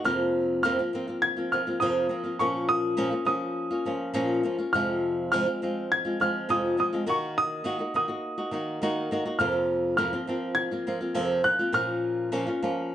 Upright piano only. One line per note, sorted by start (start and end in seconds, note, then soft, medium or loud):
0.05 0.62 F6 loud
0.63 1.24 F6 loud
1.22 1.52 G#6 loud
1.52 1.82 F6 medium
1.80 2.41 D#6 medium
2.39 2.69 C#6 loud
2.69 3.23 D#6 loud
3.27 4.40 D#6 medium
4.73 5.30 F6 loud
5.32 5.92 F6 loud
5.92 6.21 G#6 loud
6.21 6.47 F6 loud
6.50 6.78 D#6 medium
6.80 6.86 D#6 medium
7.09 7.16 C#6 medium
7.38 7.95 D#6 loud
7.96 9.08 D#6 medium
9.39 9.96 F6 medium
9.97 10.58 F6 loud
10.55 11.11 G#6 loud
11.44 11.75 F#6 loud
11.74 12.95 F6 loud